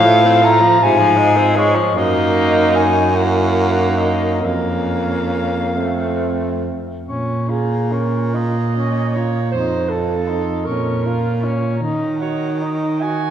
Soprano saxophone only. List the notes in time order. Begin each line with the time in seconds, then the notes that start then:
Already playing: F5
0.45 A#5
0.83 G#5
1.58 C#5
1.97 D#5
2.76 G#5
3.15 F#5
3.98 D#5
4.45 F5
7.09 C#6
7.50 A#5
7.93 C#6
8.36 A#5
8.79 C#6
9.16 A#5
9.52 C6
9.91 A5
10.27 C6
10.66 C#6
11.03 A#5
11.41 C#6
11.77 A#5
12.17 F#5
12.58 A#5
12.99 F#5